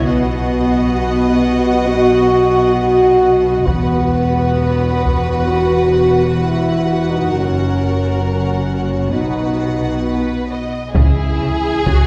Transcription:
0.03 B1 B2 B3 F#4 D#5 F#5
1.87 F#4
2.76 F#4
3.67 E1 E2 B3 F#4 B4 F#5, taiko
5.04 taiko
5.49 F#4
6.41 E4
7.09 D#4
7.30 F#1 F#2 C#4 A#4
8.23 C#4
9.12 B1 B2 D#4 F#4 B4 F#5
10.05 B4
10.50 D#5
10.93 C#2 C#3 E3 E4 G#4, taiko
11.40 C#2 C#3
11.85 C#2 C#3 F#4, taiko

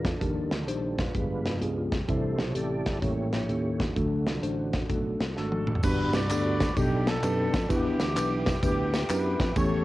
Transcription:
Already playing: E2 G#3 B3 D4 F4
0.05 D4 A4, kick, snare, closed hi-hat
0.21 D#2 D#3 F3 G3 D4 D#4 G4 A#4, kick, closed hi-hat
0.51 D2, snare, closed hi-hat
0.68 A#1 D4 D#4 G4 C5, closed hi-hat
0.98 D4 F4 B4, kick, snare, closed hi-hat
1.14 G1 G2 F3 G#3 B3 F4 G4 G#4, kick, closed hi-hat
1.45 F1, snare, closed hi-hat
1.61 C#2 B3 F4 G4 G#4, closed hi-hat
1.92 kick, snare, closed hi-hat
2.08 C2 C3 E3 A3 C4 D4 E4 G4 A4 C5, kick, closed hi-hat
2.39 B1, snare, closed hi-hat
2.51 C#5
2.55 A1 C4 E4 G4 A4 D5, closed hi-hat
2.86 G1, kick, snare, closed hi-hat
3.01 A1 A2 G3 A#3 C#4 E4 G4 A4 C#5, kick, closed hi-hat
3.33 A#1, snare, closed hi-hat
3.49 D#2 A#3 C#4 G4 A4, closed hi-hat
3.78 A3 D4 F#4, kick, snare, closed hi-hat
3.95 D2 D3 F#3 A3 D4 F#4 A4, kick, closed hi-hat
4.27 C2, snare, closed hi-hat
4.42 A1 A3 D4 F#4 C5, closed hi-hat
4.73 kick, snare, closed hi-hat
4.89 B1 F#3 A3 D4 F#4 A4, kick, closed hi-hat
5.20 C2, snare, closed hi-hat
5.36 G#1 A3 D4 F#4 A4, snare
5.52 high tom
5.67 mid tom
5.75 floor tom
5.83 G1 G2 G3 B3 D4 F#4 G4 B4 D5 F#5 B5, kick, crash, tambourine
6.13 C2 F#4 B4 D5, snare, ride, tambourine
6.29 D2 B3 D4 F#4 G4 A4, clap, ride, tambourine
6.60 kick, snare, ride, tambourine
6.77 B1 B2 B3 D4 D#4 G4 A4 D5 G5, kick, ride, tambourine
7.07 D4 D#4 A4, snare, ride, tambourine
7.23 F#2 B3 D4 D#4 G4 B4, clap, ride, tambourine
7.54 F2, kick, snare, ride, tambourine
7.69 E2 E3 B3 D4 E4 G4 B4 E5 D6, kick, ride, tambourine
8.00 D2, snare, ride, tambourine
8.16 B1 B3 D4 E4 G4 B4, clap, ride, tambourine
8.46 kick, snare, ride, tambourine
8.63 D2 B3 D4 E4 G4 B4, kick, ride, tambourine
8.94 snare, ride, tambourine
9.10 F#2 B3 D4 E4 G4 B4, clap, ride, tambourine
9.40 F2, kick, snare, ride, tambourine
9.56 E2 E3 A3 C#4 E4 G4 A4 C#5 C#6, kick, ride, tambourine

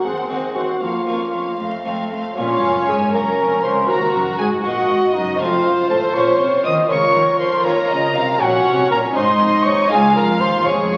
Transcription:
0.04 D#2 C4 G#4 F#5 C6
0.29 D#2 C4 D#4 F#4 F#5 C6
0.55 D#2 C4 F#4 F#5 C6
0.81 F2 A#3 F4 F5 C#6
1.06 F2 A#3 C#4 F4 F5 C#6
1.32 F2 A#3 F5 C#6
1.59 F2 A3 F5 C6
1.85 F2 A3 C4 F4 F5 C6
2.10 F2 A3 F5 C6
2.36 A#1 A#2 A#3 C#4 F4 C#5 F5
2.62 F#1 F#2
2.87 G#1 G#2 G#4 G#5
3.13 F#1 F#2 A#3 C#4 F#4 A#4 A#5
3.38 F1 F2
3.63 C#2 C5 C6
3.88 D#2 F#4 A#4 A#5
4.14 F#1 F#2
4.38 G#1 G#2 G#4 G#5
4.63 A#1 A#2 A#3 D#4 F#4 D#5 F#5
4.89 G#1 G#2
5.14 F#1 F#2 D#4 D#5
5.39 F1 F2 A3 C4 F4 C5 F5
5.64 F#1 F#2
5.89 A1 A2 A4 A5
6.14 A#1 A#2 A#3 C#4 F4 C#5 C#6
6.39 C2 C3
6.64 D#2 D#3 D#5 D#6
6.89 C#2 C#3 F4 A#4 C#5 C#6
7.14 D#2 D#3
7.39 F2 F3 C5 C6
7.64 D#2 D#3 A#3 C#4 F4 A#4 C#5 A#5
7.89 C#2 C#3 D#5
8.14 C2 C3 F5
8.39 A#1 A#2 C#4 F#4 C#5 F#5
8.65 C2 C3
8.90 A#1 A#2 A#4 A#5
9.15 G#1 G#2 G#3 D#4 G#4 C5 D#5 C6
9.40 F1 F2
9.65 D#2 C#5 C#6
9.90 C#2 G#3 F4 G#4 F5 G#5
10.15 F1 F2 A#4 A#5
10.40 D#2 C5 C6
10.66 F1 F2 G#3 F4 G#4 C#5 C#6
10.91 F#1 F#2

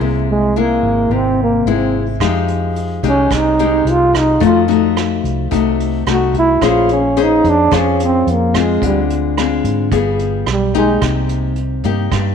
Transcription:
Already playing: G#3 A#3 E4
0.00 C2 C3
0.31 G#3
0.56 G#3 A#3 E4
0.83 G#1
1.09 G#1 C3
1.15 C4
1.43 A#3
1.65 G#1 G#3 A#3 E4
1.72 C4
2.20 F2 F3 G#3 D#4 G4, kick, cross-stick, closed hi-hat
2.48 closed hi-hat
2.76 closed hi-hat
3.03 C2 G#3 D#4 G4, kick, closed hi-hat
3.08 C#4
3.31 C2 C3, kick, cross-stick, closed hi-hat
3.36 D#4
3.59 G#3 D#4 G4, closed hi-hat
3.85 C2, closed hi-hat
3.91 F4
4.14 kick, cross-stick, closed hi-hat
4.18 D#4
4.40 F2 F3 A3 D#4 F#4, kick, closed hi-hat
4.46 F4
4.68 A3 D#4 F#4, closed hi-hat
4.97 cross-stick, closed hi-hat
5.24 C2, kick, closed hi-hat
5.51 C2 C3 A3 D#4 F#4, kick, closed hi-hat
5.80 closed hi-hat
6.06 C2 A3 D#4 F#4, cross-stick, closed hi-hat
6.12 F#4
6.34 kick, closed hi-hat
6.39 E4
6.61 A#1 A#3 C#4 G#4 C5, kick, cross-stick, closed hi-hat
6.67 F4
6.89 closed hi-hat
6.93 C#4
7.17 C#4 G#4 C5, closed hi-hat
7.22 D#4
7.44 F2, kick, closed hi-hat
7.49 D4
7.71 F2 F3 C#4 G#4 C5, kick, cross-stick, closed hi-hat
7.76 C#4
8.00 closed hi-hat
8.04 C4
8.27 F2, closed hi-hat
8.33 A#3
8.54 G#3 C4 F4, kick, cross-stick, closed hi-hat
8.59 G#3
8.82 D2 D3, kick, closed hi-hat
8.86 G3
9.10 closed hi-hat
9.38 G#3 C4 F4, cross-stick, closed hi-hat
9.64 G#2, kick, closed hi-hat
9.92 G1 G3 B3 F4 G#4, kick, closed hi-hat
10.19 closed hi-hat
10.46 B1, cross-stick, closed hi-hat
10.52 G3
10.74 G#3 A#3 D#4 G4, kick, closed hi-hat
11.02 C2 C3, kick, cross-stick, closed hi-hat
11.29 closed hi-hat
11.56 closed hi-hat
11.84 G2 A#3 D#4 G4, kick, closed hi-hat
12.12 G2, kick, cross-stick, closed hi-hat

